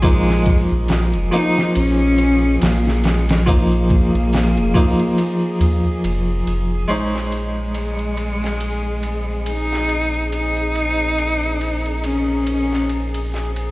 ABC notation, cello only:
X:1
M:4/4
L:1/8
Q:"Swing 16ths" 1/4=70
K:Bbm
V:1 name="Cello"
A,2 z E D2 B, A, | B,6 z2 | A,6 E2 | E4 D3 z |]